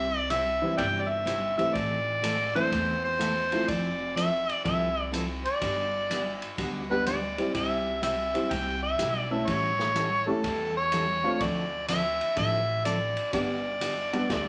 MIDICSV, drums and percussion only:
0, 0, Header, 1, 2, 480
1, 0, Start_track
1, 0, Key_signature, 0, "major"
1, 0, Tempo, 482315
1, 1744, Time_signature, 4, 2, 24, 8
1, 14413, End_track
2, 0, Start_track
2, 0, Title_t, "Drums"
2, 299, Note_on_c, 9, 44, 50
2, 299, Note_on_c, 9, 51, 64
2, 399, Note_off_c, 9, 44, 0
2, 399, Note_off_c, 9, 51, 0
2, 779, Note_on_c, 9, 51, 61
2, 782, Note_on_c, 9, 36, 31
2, 878, Note_off_c, 9, 51, 0
2, 882, Note_off_c, 9, 36, 0
2, 1263, Note_on_c, 9, 44, 49
2, 1263, Note_on_c, 9, 51, 64
2, 1363, Note_off_c, 9, 44, 0
2, 1363, Note_off_c, 9, 51, 0
2, 1581, Note_on_c, 9, 51, 42
2, 1681, Note_off_c, 9, 51, 0
2, 1744, Note_on_c, 9, 36, 36
2, 1744, Note_on_c, 9, 51, 56
2, 1844, Note_off_c, 9, 36, 0
2, 1844, Note_off_c, 9, 51, 0
2, 2225, Note_on_c, 9, 44, 59
2, 2225, Note_on_c, 9, 51, 73
2, 2324, Note_off_c, 9, 44, 0
2, 2324, Note_off_c, 9, 51, 0
2, 2548, Note_on_c, 9, 51, 39
2, 2647, Note_off_c, 9, 51, 0
2, 2707, Note_on_c, 9, 36, 32
2, 2711, Note_on_c, 9, 51, 59
2, 2806, Note_off_c, 9, 36, 0
2, 2810, Note_off_c, 9, 51, 0
2, 3190, Note_on_c, 9, 44, 56
2, 3190, Note_on_c, 9, 51, 68
2, 3290, Note_off_c, 9, 44, 0
2, 3290, Note_off_c, 9, 51, 0
2, 3503, Note_on_c, 9, 51, 47
2, 3603, Note_off_c, 9, 51, 0
2, 3665, Note_on_c, 9, 51, 61
2, 3666, Note_on_c, 9, 36, 36
2, 3764, Note_off_c, 9, 51, 0
2, 3766, Note_off_c, 9, 36, 0
2, 4152, Note_on_c, 9, 44, 54
2, 4152, Note_on_c, 9, 51, 61
2, 4251, Note_off_c, 9, 44, 0
2, 4251, Note_off_c, 9, 51, 0
2, 4472, Note_on_c, 9, 51, 43
2, 4571, Note_off_c, 9, 51, 0
2, 4629, Note_on_c, 9, 36, 33
2, 4631, Note_on_c, 9, 51, 57
2, 4728, Note_off_c, 9, 36, 0
2, 4731, Note_off_c, 9, 51, 0
2, 5110, Note_on_c, 9, 44, 56
2, 5110, Note_on_c, 9, 51, 64
2, 5210, Note_off_c, 9, 44, 0
2, 5210, Note_off_c, 9, 51, 0
2, 5428, Note_on_c, 9, 51, 43
2, 5527, Note_off_c, 9, 51, 0
2, 5588, Note_on_c, 9, 51, 64
2, 5589, Note_on_c, 9, 36, 34
2, 5688, Note_off_c, 9, 51, 0
2, 5689, Note_off_c, 9, 36, 0
2, 6077, Note_on_c, 9, 44, 60
2, 6077, Note_on_c, 9, 51, 69
2, 6177, Note_off_c, 9, 44, 0
2, 6177, Note_off_c, 9, 51, 0
2, 6389, Note_on_c, 9, 51, 45
2, 6489, Note_off_c, 9, 51, 0
2, 6549, Note_on_c, 9, 36, 33
2, 6550, Note_on_c, 9, 51, 59
2, 6649, Note_off_c, 9, 36, 0
2, 6649, Note_off_c, 9, 51, 0
2, 7030, Note_on_c, 9, 44, 55
2, 7030, Note_on_c, 9, 51, 62
2, 7129, Note_off_c, 9, 44, 0
2, 7129, Note_off_c, 9, 51, 0
2, 7346, Note_on_c, 9, 51, 45
2, 7446, Note_off_c, 9, 51, 0
2, 7509, Note_on_c, 9, 36, 34
2, 7509, Note_on_c, 9, 51, 66
2, 7609, Note_off_c, 9, 36, 0
2, 7609, Note_off_c, 9, 51, 0
2, 7989, Note_on_c, 9, 44, 53
2, 7989, Note_on_c, 9, 51, 68
2, 8089, Note_off_c, 9, 44, 0
2, 8089, Note_off_c, 9, 51, 0
2, 8308, Note_on_c, 9, 51, 44
2, 8408, Note_off_c, 9, 51, 0
2, 8467, Note_on_c, 9, 36, 33
2, 8469, Note_on_c, 9, 51, 58
2, 8567, Note_off_c, 9, 36, 0
2, 8568, Note_off_c, 9, 51, 0
2, 8946, Note_on_c, 9, 44, 63
2, 8946, Note_on_c, 9, 51, 63
2, 9046, Note_off_c, 9, 44, 0
2, 9046, Note_off_c, 9, 51, 0
2, 9429, Note_on_c, 9, 36, 35
2, 9429, Note_on_c, 9, 51, 63
2, 9529, Note_off_c, 9, 36, 0
2, 9529, Note_off_c, 9, 51, 0
2, 9746, Note_on_c, 9, 38, 33
2, 9845, Note_off_c, 9, 38, 0
2, 9908, Note_on_c, 9, 44, 51
2, 9908, Note_on_c, 9, 51, 59
2, 10007, Note_off_c, 9, 44, 0
2, 10007, Note_off_c, 9, 51, 0
2, 10390, Note_on_c, 9, 36, 34
2, 10390, Note_on_c, 9, 51, 67
2, 10489, Note_off_c, 9, 36, 0
2, 10489, Note_off_c, 9, 51, 0
2, 10866, Note_on_c, 9, 44, 64
2, 10866, Note_on_c, 9, 51, 65
2, 10966, Note_off_c, 9, 44, 0
2, 10966, Note_off_c, 9, 51, 0
2, 11349, Note_on_c, 9, 51, 63
2, 11350, Note_on_c, 9, 36, 37
2, 11449, Note_off_c, 9, 51, 0
2, 11450, Note_off_c, 9, 36, 0
2, 11826, Note_on_c, 9, 44, 59
2, 11826, Note_on_c, 9, 51, 71
2, 11925, Note_off_c, 9, 44, 0
2, 11925, Note_off_c, 9, 51, 0
2, 12150, Note_on_c, 9, 51, 44
2, 12250, Note_off_c, 9, 51, 0
2, 12305, Note_on_c, 9, 51, 59
2, 12309, Note_on_c, 9, 36, 31
2, 12405, Note_off_c, 9, 51, 0
2, 12409, Note_off_c, 9, 36, 0
2, 12790, Note_on_c, 9, 44, 52
2, 12790, Note_on_c, 9, 51, 55
2, 12889, Note_off_c, 9, 44, 0
2, 12889, Note_off_c, 9, 51, 0
2, 13103, Note_on_c, 9, 51, 47
2, 13203, Note_off_c, 9, 51, 0
2, 13266, Note_on_c, 9, 51, 67
2, 13267, Note_on_c, 9, 36, 35
2, 13366, Note_off_c, 9, 51, 0
2, 13367, Note_off_c, 9, 36, 0
2, 13745, Note_on_c, 9, 44, 54
2, 13745, Note_on_c, 9, 51, 70
2, 13845, Note_off_c, 9, 44, 0
2, 13845, Note_off_c, 9, 51, 0
2, 14065, Note_on_c, 9, 51, 44
2, 14165, Note_off_c, 9, 51, 0
2, 14229, Note_on_c, 9, 36, 34
2, 14231, Note_on_c, 9, 38, 42
2, 14231, Note_on_c, 9, 51, 58
2, 14328, Note_off_c, 9, 36, 0
2, 14331, Note_off_c, 9, 38, 0
2, 14331, Note_off_c, 9, 51, 0
2, 14413, End_track
0, 0, End_of_file